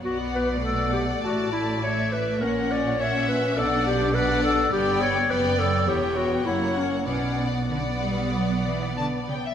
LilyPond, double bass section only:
\new Staff \with { instrumentName = "Double bass section" } { \clef bass \time 4/4 \key b \minor \tempo 4 = 102 b,,2 a,,2 | ais,,2 b,,2 | g,,4 fis,,4 e,,4 fis,,4 | b,,2.~ b,,8 r8 | }